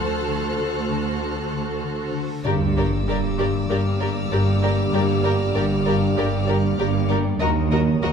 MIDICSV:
0, 0, Header, 1, 13, 480
1, 0, Start_track
1, 0, Tempo, 618557
1, 1905, Time_signature, 4, 2, 24, 8
1, 6306, End_track
2, 0, Start_track
2, 0, Title_t, "Violin section"
2, 0, Program_c, 0, 48
2, 0, Note_on_c, 0, 89, 35
2, 0, Note_on_c, 0, 90, 30
2, 1634, Note_off_c, 0, 89, 0
2, 1635, Note_off_c, 0, 90, 0
2, 1892, Note_on_c, 0, 88, 34
2, 1894, Note_on_c, 0, 86, 33
2, 2865, Note_on_c, 0, 89, 32
2, 4987, Note_off_c, 0, 88, 0
2, 5468, Note_off_c, 0, 86, 0
2, 5474, Note_off_c, 0, 89, 0
2, 5749, Note_on_c, 0, 87, 40
2, 6233, Note_on_c, 0, 90, 39
2, 6306, Note_off_c, 0, 87, 0
2, 6306, Note_off_c, 0, 90, 0
2, 6306, End_track
3, 0, Start_track
3, 0, Title_t, "Violin section"
3, 0, Program_c, 1, 48
3, 0, Note_on_c, 1, 72, 44
3, 1755, Note_off_c, 1, 72, 0
3, 1903, Note_on_c, 1, 74, 41
3, 1965, Note_off_c, 1, 74, 0
3, 2154, Note_on_c, 1, 74, 30
3, 2216, Note_off_c, 1, 74, 0
3, 2404, Note_on_c, 1, 74, 38
3, 2466, Note_off_c, 1, 74, 0
3, 2630, Note_on_c, 1, 74, 36
3, 2692, Note_off_c, 1, 74, 0
3, 2871, Note_on_c, 1, 74, 38
3, 2933, Note_off_c, 1, 74, 0
3, 3109, Note_on_c, 1, 74, 34
3, 3171, Note_off_c, 1, 74, 0
3, 3348, Note_on_c, 1, 74, 38
3, 3410, Note_off_c, 1, 74, 0
3, 3597, Note_on_c, 1, 74, 38
3, 3659, Note_off_c, 1, 74, 0
3, 3831, Note_on_c, 1, 74, 35
3, 3893, Note_off_c, 1, 74, 0
3, 4060, Note_on_c, 1, 74, 36
3, 4122, Note_off_c, 1, 74, 0
3, 4306, Note_on_c, 1, 74, 39
3, 4368, Note_off_c, 1, 74, 0
3, 4552, Note_on_c, 1, 74, 36
3, 4614, Note_off_c, 1, 74, 0
3, 4793, Note_on_c, 1, 74, 36
3, 4855, Note_off_c, 1, 74, 0
3, 5020, Note_on_c, 1, 74, 36
3, 5082, Note_off_c, 1, 74, 0
3, 5274, Note_on_c, 1, 74, 40
3, 5336, Note_off_c, 1, 74, 0
3, 5500, Note_on_c, 1, 74, 41
3, 5562, Note_off_c, 1, 74, 0
3, 5744, Note_on_c, 1, 75, 47
3, 5806, Note_off_c, 1, 75, 0
3, 5984, Note_on_c, 1, 75, 38
3, 6046, Note_off_c, 1, 75, 0
3, 6228, Note_on_c, 1, 75, 46
3, 6290, Note_off_c, 1, 75, 0
3, 6306, End_track
4, 0, Start_track
4, 0, Title_t, "Violin section"
4, 0, Program_c, 2, 48
4, 0, Note_on_c, 2, 69, 49
4, 1722, Note_off_c, 2, 69, 0
4, 1900, Note_on_c, 2, 70, 43
4, 1962, Note_off_c, 2, 70, 0
4, 2146, Note_on_c, 2, 70, 36
4, 2208, Note_off_c, 2, 70, 0
4, 2388, Note_on_c, 2, 70, 35
4, 2450, Note_off_c, 2, 70, 0
4, 2626, Note_on_c, 2, 70, 35
4, 2688, Note_off_c, 2, 70, 0
4, 2868, Note_on_c, 2, 70, 35
4, 2930, Note_off_c, 2, 70, 0
4, 3102, Note_on_c, 2, 70, 33
4, 3164, Note_off_c, 2, 70, 0
4, 3348, Note_on_c, 2, 70, 38
4, 3410, Note_off_c, 2, 70, 0
4, 3586, Note_on_c, 2, 70, 36
4, 3649, Note_off_c, 2, 70, 0
4, 3831, Note_on_c, 2, 70, 39
4, 3893, Note_off_c, 2, 70, 0
4, 4062, Note_on_c, 2, 70, 39
4, 4124, Note_off_c, 2, 70, 0
4, 4302, Note_on_c, 2, 70, 37
4, 4364, Note_off_c, 2, 70, 0
4, 4548, Note_on_c, 2, 70, 40
4, 4610, Note_off_c, 2, 70, 0
4, 4789, Note_on_c, 2, 70, 38
4, 4851, Note_off_c, 2, 70, 0
4, 5030, Note_on_c, 2, 70, 38
4, 5092, Note_off_c, 2, 70, 0
4, 5262, Note_on_c, 2, 70, 40
4, 5324, Note_off_c, 2, 70, 0
4, 5510, Note_on_c, 2, 70, 38
4, 5572, Note_off_c, 2, 70, 0
4, 5748, Note_on_c, 2, 70, 51
4, 5810, Note_off_c, 2, 70, 0
4, 5984, Note_on_c, 2, 70, 41
4, 6046, Note_off_c, 2, 70, 0
4, 6232, Note_on_c, 2, 70, 46
4, 6294, Note_off_c, 2, 70, 0
4, 6306, End_track
5, 0, Start_track
5, 0, Title_t, "Viola section"
5, 0, Program_c, 3, 48
5, 0, Note_on_c, 3, 66, 24
5, 1720, Note_off_c, 3, 66, 0
5, 1908, Note_on_c, 3, 67, 40
5, 1970, Note_off_c, 3, 67, 0
5, 2145, Note_on_c, 3, 67, 33
5, 2207, Note_off_c, 3, 67, 0
5, 2388, Note_on_c, 3, 67, 37
5, 2450, Note_off_c, 3, 67, 0
5, 2626, Note_on_c, 3, 67, 40
5, 2688, Note_off_c, 3, 67, 0
5, 2870, Note_on_c, 3, 67, 40
5, 2932, Note_off_c, 3, 67, 0
5, 3108, Note_on_c, 3, 67, 33
5, 3170, Note_off_c, 3, 67, 0
5, 3354, Note_on_c, 3, 67, 36
5, 3416, Note_off_c, 3, 67, 0
5, 3590, Note_on_c, 3, 67, 39
5, 3652, Note_off_c, 3, 67, 0
5, 3831, Note_on_c, 3, 67, 41
5, 3893, Note_off_c, 3, 67, 0
5, 4073, Note_on_c, 3, 67, 35
5, 4135, Note_off_c, 3, 67, 0
5, 4314, Note_on_c, 3, 67, 40
5, 4376, Note_off_c, 3, 67, 0
5, 4556, Note_on_c, 3, 67, 42
5, 4618, Note_off_c, 3, 67, 0
5, 4792, Note_on_c, 3, 67, 42
5, 4854, Note_off_c, 3, 67, 0
5, 5034, Note_on_c, 3, 67, 39
5, 5096, Note_off_c, 3, 67, 0
5, 5270, Note_on_c, 3, 67, 37
5, 5332, Note_off_c, 3, 67, 0
5, 5515, Note_on_c, 3, 67, 43
5, 5577, Note_off_c, 3, 67, 0
5, 5753, Note_on_c, 3, 66, 47
5, 5815, Note_off_c, 3, 66, 0
5, 5990, Note_on_c, 3, 66, 41
5, 6053, Note_off_c, 3, 66, 0
5, 6227, Note_on_c, 3, 66, 49
5, 6289, Note_off_c, 3, 66, 0
5, 6306, End_track
6, 0, Start_track
6, 0, Title_t, "French horn section"
6, 0, Program_c, 4, 60
6, 1906, Note_on_c, 4, 58, 44
6, 1906, Note_on_c, 4, 67, 42
6, 5714, Note_off_c, 4, 58, 0
6, 5715, Note_off_c, 4, 67, 0
6, 5749, Note_on_c, 4, 58, 51
6, 5751, Note_on_c, 4, 70, 57
6, 6306, Note_off_c, 4, 58, 0
6, 6306, Note_off_c, 4, 70, 0
6, 6306, End_track
7, 0, Start_track
7, 0, Title_t, "Trombone section"
7, 0, Program_c, 5, 61
7, 1901, Note_on_c, 5, 50, 47
7, 1907, Note_on_c, 5, 55, 45
7, 5712, Note_off_c, 5, 50, 0
7, 5715, Note_off_c, 5, 55, 0
7, 5746, Note_on_c, 5, 51, 54
7, 5750, Note_on_c, 5, 54, 54
7, 6306, Note_off_c, 5, 51, 0
7, 6306, Note_off_c, 5, 54, 0
7, 6306, End_track
8, 0, Start_track
8, 0, Title_t, "Harp"
8, 0, Program_c, 6, 46
8, 0, Note_on_c, 6, 50, 27
8, 210, Note_off_c, 6, 50, 0
8, 219, Note_on_c, 6, 50, 21
8, 448, Note_off_c, 6, 50, 0
8, 458, Note_on_c, 6, 50, 20
8, 690, Note_off_c, 6, 50, 0
8, 699, Note_on_c, 6, 50, 30
8, 939, Note_on_c, 6, 62, 19
8, 1169, Note_off_c, 6, 50, 0
8, 1178, Note_on_c, 6, 50, 19
8, 1411, Note_off_c, 6, 50, 0
8, 1421, Note_on_c, 6, 50, 29
8, 1652, Note_off_c, 6, 50, 0
8, 1662, Note_on_c, 6, 50, 20
8, 1900, Note_on_c, 6, 43, 48
8, 1923, Note_off_c, 6, 50, 0
8, 2132, Note_off_c, 6, 43, 0
8, 2141, Note_on_c, 6, 43, 33
8, 2371, Note_off_c, 6, 43, 0
8, 2381, Note_on_c, 6, 43, 35
8, 2612, Note_off_c, 6, 43, 0
8, 2621, Note_on_c, 6, 43, 46
8, 2859, Note_off_c, 6, 43, 0
8, 2868, Note_on_c, 6, 43, 35
8, 3100, Note_off_c, 6, 43, 0
8, 3109, Note_on_c, 6, 43, 38
8, 3341, Note_off_c, 6, 43, 0
8, 3351, Note_on_c, 6, 43, 50
8, 3587, Note_on_c, 6, 55, 36
8, 3812, Note_off_c, 6, 43, 0
8, 3821, Note_on_c, 6, 43, 51
8, 3965, Note_off_c, 6, 62, 0
8, 4055, Note_off_c, 6, 43, 0
8, 4308, Note_on_c, 6, 43, 36
8, 4540, Note_off_c, 6, 43, 0
8, 4549, Note_on_c, 6, 43, 54
8, 4781, Note_off_c, 6, 43, 0
8, 4790, Note_on_c, 6, 43, 38
8, 5026, Note_off_c, 6, 43, 0
8, 5036, Note_on_c, 6, 43, 39
8, 5264, Note_off_c, 6, 43, 0
8, 5273, Note_on_c, 6, 43, 58
8, 5498, Note_off_c, 6, 55, 0
8, 5507, Note_on_c, 6, 55, 41
8, 5755, Note_on_c, 6, 51, 56
8, 5765, Note_off_c, 6, 55, 0
8, 5768, Note_off_c, 6, 43, 0
8, 5980, Note_off_c, 6, 51, 0
8, 5990, Note_on_c, 6, 51, 42
8, 6218, Note_off_c, 6, 51, 0
8, 6227, Note_on_c, 6, 51, 45
8, 6306, Note_off_c, 6, 51, 0
8, 6306, End_track
9, 0, Start_track
9, 0, Title_t, "Cello section"
9, 0, Program_c, 7, 48
9, 0, Note_on_c, 7, 38, 32
9, 1753, Note_off_c, 7, 38, 0
9, 1907, Note_on_c, 7, 43, 43
9, 2329, Note_off_c, 7, 43, 0
9, 2389, Note_on_c, 7, 43, 37
9, 2810, Note_off_c, 7, 43, 0
9, 2871, Note_on_c, 7, 43, 36
9, 3291, Note_off_c, 7, 43, 0
9, 3351, Note_on_c, 7, 43, 47
9, 3772, Note_off_c, 7, 43, 0
9, 3833, Note_on_c, 7, 43, 46
9, 4252, Note_off_c, 7, 43, 0
9, 4310, Note_on_c, 7, 43, 37
9, 4731, Note_off_c, 7, 43, 0
9, 4792, Note_on_c, 7, 43, 46
9, 5212, Note_off_c, 7, 43, 0
9, 5269, Note_on_c, 7, 43, 50
9, 5690, Note_off_c, 7, 43, 0
9, 5748, Note_on_c, 7, 39, 58
9, 6170, Note_off_c, 7, 39, 0
9, 6227, Note_on_c, 7, 39, 52
9, 6306, Note_off_c, 7, 39, 0
9, 6306, End_track
10, 0, Start_track
10, 0, Title_t, "Timpani"
10, 0, Program_c, 8, 47
10, 1898, Note_on_c, 8, 43, 53
10, 2590, Note_off_c, 8, 43, 0
10, 6306, End_track
11, 0, Start_track
11, 0, Title_t, "Double bass section"
11, 0, Program_c, 10, 48
11, 0, Note_on_c, 10, 38, 31
11, 1749, Note_off_c, 10, 38, 0
11, 1897, Note_on_c, 10, 31, 45
11, 2324, Note_off_c, 10, 31, 0
11, 2380, Note_on_c, 10, 31, 44
11, 2806, Note_off_c, 10, 31, 0
11, 2865, Note_on_c, 10, 31, 41
11, 3288, Note_off_c, 10, 31, 0
11, 3346, Note_on_c, 10, 31, 46
11, 3769, Note_off_c, 10, 31, 0
11, 3827, Note_on_c, 10, 31, 51
11, 4249, Note_off_c, 10, 31, 0
11, 4305, Note_on_c, 10, 31, 53
11, 4728, Note_off_c, 10, 31, 0
11, 4787, Note_on_c, 10, 31, 45
11, 5209, Note_off_c, 10, 31, 0
11, 5265, Note_on_c, 10, 31, 48
11, 5689, Note_off_c, 10, 31, 0
11, 5743, Note_on_c, 10, 39, 56
11, 6167, Note_off_c, 10, 39, 0
11, 6224, Note_on_c, 10, 39, 50
11, 6306, Note_off_c, 10, 39, 0
11, 6306, End_track
12, 0, Start_track
12, 0, Title_t, "Reverse cymbal"
12, 0, Program_c, 11, 119
12, 0, Note_on_c, 11, 60, 25
12, 1905, Note_off_c, 11, 60, 0
12, 6306, End_track
13, 0, Start_track
13, 0, Title_t, "Sub drop"
13, 0, Program_c, 12, 103
13, 1903, Note_on_c, 12, 60, 43
13, 3824, Note_off_c, 12, 60, 0
13, 6306, End_track
0, 0, End_of_file